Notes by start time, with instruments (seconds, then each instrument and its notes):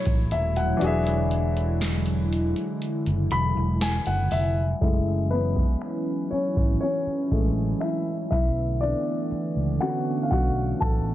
Already playing: analog synth pad B2 F#3 A3 E4, grand piano F#3 C#4 G#4 A4 C#5
0.06 fingered electric bass A1, kick, closed hi-hat
0.31 fingered electric bass D#1, grand piano E5, closed hi-hat
0.56 grand piano F#5, closed hi-hat
0.77 grand piano E3 D4
0.81 fingered electric bass E1, analog synth pad D3 G#3, grand piano F#4 G#4, closed hi-hat
0.87 grand piano E5
1.07 closed hi-hat
1.31 closed hi-hat
1.57 closed hi-hat
1.81 snare, closed hi-hat
2.06 closed hi-hat
2.33 closed hi-hat
2.56 closed hi-hat
2.82 closed hi-hat
3.06 fingered electric bass F#1, closed hi-hat
3.31 fingered electric bass E1, grand piano B5, closed hi-hat
3.57 fingered electric bass E1
3.81 grand piano G#5, snare, closed hi-hat
4.06 fingered electric bass F#1, grand piano F#5, closed hi-hat
4.31 fingered electric bass F1, grand piano E5, open hi-hat
4.81 fingered electric bass F#1, analog synth pad E3 F#3 C#4 E4, grand piano G#3 A3 E4, kick, closed hi-hat
5.31 grand piano B3 B4, closed hi-hat
5.56 kick
5.81 finger snap, closed hi-hat
6.31 grand piano C#4 C#5, muted fingered electric bass stroke, closed hi-hat
6.57 fingered electric bass G#1, kick
6.81 grand piano C#4 C#5, closed hi-hat
7.07 muted fingered electric bass stroke
7.31 fingered electric bass A1, grand piano G#3 A3 E4, kick, closed hi-hat
7.48 closed hi-hat
7.65 closed hi-hat
7.81 grand piano E4 E5, finger snap, closed hi-hat
8.31 fingered electric bass B1, analog synth pad D3 A3 B3, grand piano E4 E5, kick, closed hi-hat
8.81 grand piano D4 D5, closed hi-hat
9.31 muted fingered electric bass stroke, closed hi-hat
9.57 fingered electric bass C#2
9.80 grand piano D3 A3 C#4 F#4 F#5, finger snap, closed hi-hat
10.23 grand piano F5
10.31 fingered electric bass B1, grand piano F#4 F#5, kick, closed hi-hat
10.80 fingered electric bass A1, grand piano A4 A5, kick, closed hi-hat